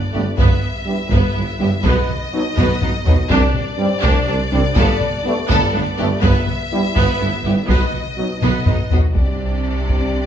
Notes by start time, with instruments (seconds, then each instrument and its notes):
Already playing: violin section D5
0.13 double bass section G1, tuba G1, trombone section G2 A3, cello section G2, french horn section B3 D4, viola section B3, violin section G4
0.36 double bass section G1, tuba G1, cello section G2, viola section B3, violin section B4 E5, taiko
0.86 trombone section G2 G3, french horn section B3 E4
1.11 double bass section G1, tuba G1, cello section G2, viola section B3, violin section B4, taiko
1.35 double bass section G1, tuba G1, cello section G2, viola section B3, violin section E4
1.60 double bass section G1, tuba G1, trombone section G2 G3, cello section G2, french horn section B3 E4, viola section B3, violin section G4
1.84 double bass section B1, tuba B1, cello section B2, viola section B3, violin section B4 D#5, taiko
2.09 taiko mid
2.33 trombone section B2 F#3, french horn section B3 D#4
2.57 double bass section B1, tuba B1, cello section B2, viola section B3, violin section B4, taiko low-mid
2.82 double bass section B1, tuba B1, cello section B2, viola section B3, violin section D#4, taiko low-mid
3.05 double bass section B1, tuba B1, trombone section B2 F#3, cello section B2, viola section B3, french horn section B3 D#4, violin section F#4, taiko low
3.30 double bass section C2, tuba C2, cello section C3, viola section D4, violin section G4 D5, taiko
3.54 taiko mid
3.78 trombone section G2 G3, french horn section C4 D4
4.02 double bass section C2, tuba C2, cello section C3, viola section D4, violin section G4, taiko
4.27 double bass section C2, tuba C2, cello section C3, violin section C4, viola section D4
4.51 tuba C2, double bass section C2, trombone section G2 G3, cello section C3, french horn section C4 D4, viola section D4, violin section D4
4.76 double bass section G1, tuba G1, cello section G2, viola section B3, violin section A4, taiko
5.01 taiko mid
5.23 trombone section G2 A3, french horn section B3 D4
5.49 double bass section G1, tuba G1, cello section G2, viola section B3, violin section A4, taiko
5.74 double bass section G1, tuba G1, cello section G2, viola section B3, violin section D4
5.98 tuba G1, double bass section G1, cello section G2, trombone section G2 A3, viola section B3, french horn section B3 D4, violin section G4
6.21 tuba G1, double bass section G1, cello section G2, viola section B3, violin section B4 E5, taiko
6.47 taiko mid
6.72 trombone section G2 G3, french horn section B3 E4
6.96 tuba G1, double bass section G1, cello section G2, viola section B3, violin section B4, taiko
7.20 double bass section G1, tuba G1, cello section G2, viola section B3, violin section E4
7.45 double bass section G1, tuba G1, cello section G2, trombone section G2 G3, viola section B3, french horn section B3 E4, violin section G4
7.68 double bass section B1, tuba B1, cello section B2, viola section B3, violin section B4 D#5, taiko
7.94 taiko mid
8.17 trombone section B2 F#3, french horn section B3 D#4
8.42 double bass section B1, tuba B1, cello section B2, viola section B3, violin section B4, taiko mid
8.66 double bass section B1, tuba B1, cello section B2, viola section B3, violin section D#4, taiko low-mid
8.90 double bass section B1, tuba B1, trombone section B2 F#3, cello section B2, french horn section B3 D#4, viola section B3, violin section F#4, taiko low
9.15 double bass section C2, cello section C3, viola section D4, french horn section D4 G4, violin section G4 D5, taiko
9.89 taiko